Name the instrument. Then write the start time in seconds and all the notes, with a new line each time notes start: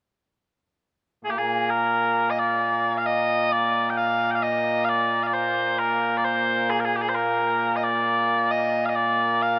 bagpipes
1.25 A#2 A#3 G#4
1.30 G4
1.38 G#4
1.70 A#4
2.30 D#5
2.39 D5
2.97 F5
3.06 D#5
3.52 D5
3.90 G5
3.97 F5
4.31 G5
4.35 F5
4.42 D#5
4.85 F5
4.89 D5
5.23 D5 F5
5.34 C5
5.79 A#4
6.17 D5
6.25 C5
6.70 G#4
6.80 A#4
6.85 G#4
6.96 G4
7.02 G#4
7.09 C5
7.15 A#4
7.76 D#5
7.83 D5
8.51 D#5
8.85 D#5 F5
8.95 D5
9.42 F5